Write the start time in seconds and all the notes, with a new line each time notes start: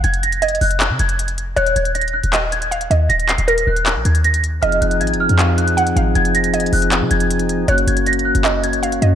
0.04 F1 G#6, closed hi-hat
0.14 closed hi-hat
0.23 A#6, closed hi-hat
0.32 closed hi-hat
0.42 D#5 G#6, closed hi-hat
0.48 closed hi-hat
0.55 closed hi-hat
0.61 F1 F#6, open hi-hat
0.71 closed hi-hat
0.80 clap, closed hi-hat
0.90 C3
0.99 F1 G#6, closed hi-hat
1.09 closed hi-hat
1.19 closed hi-hat
1.28 closed hi-hat
1.38 closed hi-hat
1.56 D#1 C#5 F#6, closed hi-hat
1.66 closed hi-hat
1.76 D#1 G#6, closed hi-hat
1.85 closed hi-hat
1.95 A#6, closed hi-hat
2.01 closed hi-hat
2.08 closed hi-hat
2.13 F#6
2.23 D#1, closed hi-hat
2.33 D#5, clap, closed hi-hat
2.52 G#6, closed hi-hat
2.62 closed hi-hat
2.71 F5, closed hi-hat
2.81 closed hi-hat
2.91 D#2 D#5, closed hi-hat
3.09 D#1 A#6, closed hi-hat
3.20 closed hi-hat
3.28 C7, clap, closed hi-hat
3.38 D#1, closed hi-hat
3.47 A#4 A#6, closed hi-hat
3.58 closed hi-hat
3.67 D#1 F#6
3.76 closed hi-hat
3.86 clap, closed hi-hat
3.96 A#1
4.05 D#2 G#6, closed hi-hat
4.15 closed hi-hat
4.24 A#6, closed hi-hat
4.34 closed hi-hat
4.44 closed hi-hat
4.62 F1 F3 C4 D#4 G#4 D#5 F6, closed hi-hat
4.72 closed hi-hat
4.81 F1 F#6, closed hi-hat
4.91 closed hi-hat
5.00 G#1 G#6, closed hi-hat
5.07 closed hi-hat
5.14 F1, closed hi-hat
5.20 F6
5.29 F2, closed hi-hat
5.39 F5, clap, closed hi-hat
5.58 F#6, closed hi-hat
5.68 closed hi-hat
5.77 F#5, closed hi-hat
5.87 closed hi-hat
5.96 G#1 F5, closed hi-hat
6.15 F1 G#6, closed hi-hat
6.25 closed hi-hat
6.35 A#6, closed hi-hat
6.44 closed hi-hat
6.54 D#5 G#6, closed hi-hat
6.60 closed hi-hat
6.66 closed hi-hat
6.73 F1 F#6, open hi-hat
6.82 closed hi-hat
6.92 clap, closed hi-hat
7.01 C3
7.11 F1 G#6, closed hi-hat
7.20 closed hi-hat
7.30 closed hi-hat
7.39 closed hi-hat
7.49 closed hi-hat
7.68 F#1 A#3 C#4 F#4 C#5 F#6, closed hi-hat
7.78 closed hi-hat
7.87 F#1 G#6, closed hi-hat
7.97 closed hi-hat
8.06 A#6, closed hi-hat
8.13 closed hi-hat
8.19 closed hi-hat
8.25 F#6
8.35 F#1, closed hi-hat
8.45 D#5, clap, closed hi-hat
8.64 G#6, closed hi-hat
8.73 closed hi-hat
8.83 F5, closed hi-hat
8.92 closed hi-hat
9.02 F#2 D#5, closed hi-hat